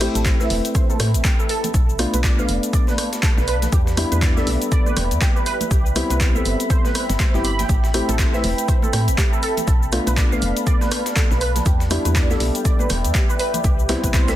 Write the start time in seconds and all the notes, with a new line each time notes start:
Already playing: C4 E5 G5 B5
0.00 A3 C4 E4 G4, cross-stick, open hi-hat, shaker
0.15 A1 A4, closed hi-hat, high conga, cabasa
0.25 C5, kick, snare, clap, closed hi-hat, cabasa, shaker
0.39 A3 C4 E4 B4 E5, snare, cabasa
0.50 E1, snare, open hi-hat, high conga
0.65 closed hi-hat, cabasa
0.75 C5, kick, closed hi-hat, cabasa, shaker
0.90 A4, high conga, cabasa
1.00 A2, cross-stick, snare, open hi-hat, shaker
1.14 A1, closed hi-hat, cabasa
1.24 G4, kick, snare, clap, closed hi-hat, high conga, cabasa, shaker
1.39 A4, cabasa
1.49 A4, open hi-hat, shaker
1.64 closed hi-hat, high conga, low conga, cabasa
1.74 B1 A4 D5 F5 A5 B5, kick, closed hi-hat, cabasa, shaker
1.89 cabasa
1.99 A3 B3 D4 F4, cross-stick, open hi-hat, shaker
2.13 B1 B4, closed hi-hat, high conga, cabasa
2.24 D5, kick, snare, clap, closed hi-hat, cabasa, shaker
2.38 A3 B3 D4 B4 F5, cabasa
2.49 F1, open hi-hat, shaker
2.63 closed hi-hat, cabasa
2.73 D5, kick, closed hi-hat, cabasa, shaker
2.87 B4, snare, high conga, cabasa
2.98 cross-stick, open hi-hat, shaker
3.13 snare, closed hi-hat, cabasa
3.23 A4, kick, snare, clap, closed hi-hat, high conga, cabasa, shaker
3.37 B1 B4, snare, cabasa
3.48 B4, open hi-hat, shaker
3.62 snare, closed hi-hat, high conga, low conga, cabasa
3.72 E2 G4 E5 G5, kick, closed hi-hat, cabasa, shaker
3.87 snare, cabasa
3.97 G3 B3 D4 E4, cross-stick, open hi-hat, shaker
4.12 E2 B4, closed hi-hat, high conga, cabasa
4.22 D5, kick, snare, clap, closed hi-hat, cabasa, shaker
4.36 G3 B3 D4 A4 E5, snare, cabasa
4.47 B1, snare, open hi-hat, high conga
4.62 closed hi-hat, cabasa
4.72 D5, kick, closed hi-hat, cabasa, shaker
4.86 B4, high conga, cabasa
4.97 E1, cross-stick, snare, open hi-hat, shaker
5.11 E2, closed hi-hat, cabasa
5.21 G4, kick, snare, clap, closed hi-hat, high conga, cabasa, shaker
5.36 B4, cabasa
5.46 B4, open hi-hat, shaker
5.60 closed hi-hat, high conga, low conga, cabasa
5.71 C2 G4 G5, kick, closed hi-hat, cabasa, shaker
5.86 cabasa
5.95 G3 B3 C4 E4, cross-stick, open hi-hat, shaker
6.10 C2 B4, closed hi-hat, high conga, cabasa
6.20 C5, kick, snare, clap, closed hi-hat, cabasa, shaker
6.35 G3 B3 C4 A4 E5, cabasa
6.45 G1, open hi-hat, shaker
6.60 closed hi-hat, cabasa
6.70 C5, kick, closed hi-hat, cabasa, shaker
6.85 B4, snare, high conga, cabasa
6.95 cross-stick, open hi-hat, shaker
7.09 G1, snare, closed hi-hat, cabasa
7.19 C5, kick, snare, clap, closed hi-hat, high conga, cabasa, shaker
7.34 G1 G3 B3 C4 E4 G4, snare, cabasa
7.44 B5, open hi-hat, shaker
7.59 G5, snare, closed hi-hat, high conga, low conga, cabasa
7.69 A1 C4 G4, kick, closed hi-hat, cabasa, shaker
7.84 snare, cabasa
7.94 A3 C4 E4 G4, cross-stick, open hi-hat, shaker
8.08 A1 A4, closed hi-hat, high conga, cabasa
8.19 C5, kick, snare, clap, closed hi-hat, cabasa, shaker
8.33 A3 C4 E4 B4 E5, snare, cabasa
8.44 E1, snare, open hi-hat, high conga
8.58 closed hi-hat, cabasa
8.68 C5, kick, closed hi-hat, cabasa, shaker
8.82 A4, high conga, cabasa
8.93 A2, cross-stick, snare, open hi-hat, shaker
9.08 A1, closed hi-hat, cabasa
9.18 G4, kick, snare, clap, closed hi-hat, high conga, cabasa, shaker
9.32 A4, cabasa
9.43 A4, open hi-hat, shaker
9.57 closed hi-hat, high conga, low conga, cabasa
9.67 B1 A4 D5 F5 A5, kick, closed hi-hat, cabasa, shaker
9.83 cabasa
9.92 A3 B3 D4 F4, cross-stick, open hi-hat, shaker
10.07 B1 B4, closed hi-hat, high conga, cabasa
10.17 D5, kick, snare, clap, closed hi-hat, cabasa, shaker
10.31 A3 B3 D4 B4 F5, cabasa
10.42 F1, open hi-hat, shaker
10.57 closed hi-hat, cabasa
10.67 D5, kick, closed hi-hat, cabasa, shaker
10.81 B4, snare, high conga, cabasa
10.91 cross-stick, open hi-hat, shaker
11.06 snare, closed hi-hat, cabasa
11.16 A4, kick, snare, clap, closed hi-hat, high conga, cabasa, shaker
11.31 B1 B4, snare, cabasa
11.41 B4, open hi-hat, shaker
11.56 snare, closed hi-hat, high conga, low conga, cabasa
11.66 E2 G4 D5 E5 G5, kick, closed hi-hat, cabasa, shaker
11.80 snare, cabasa
11.90 G3 B3 D4 E4, cross-stick, open hi-hat, shaker
12.05 E2 B4, closed hi-hat, high conga, cabasa
12.15 D5, kick, snare, clap, closed hi-hat, cabasa, shaker
12.29 G3 B3 D4 A4 E5, snare, cabasa
12.40 B1, snare, open hi-hat, high conga
12.55 closed hi-hat, cabasa
12.65 D5, kick, closed hi-hat, cabasa, shaker
12.79 B4, high conga, cabasa
12.90 E1, cross-stick, snare, open hi-hat, shaker
13.04 E2, closed hi-hat, cabasa
13.14 G4, kick, snare, clap, closed hi-hat, high conga, cabasa, shaker
13.29 B4, cabasa
13.39 B4, open hi-hat, shaker
13.54 closed hi-hat, high conga, low conga, cabasa
13.64 C2 G4 B5, kick, closed hi-hat, cabasa, shaker
13.79 cabasa
13.89 G3 B3 C4 E4, cross-stick, snare, open hi-hat, shaker
14.03 C2 B4, kick, closed hi-hat, high conga, cabasa
14.14 C5, kick, clap, closed hi-hat, cabasa, shaker
14.28 G3 B3 C4 A4 E5, snare, cabasa, shaker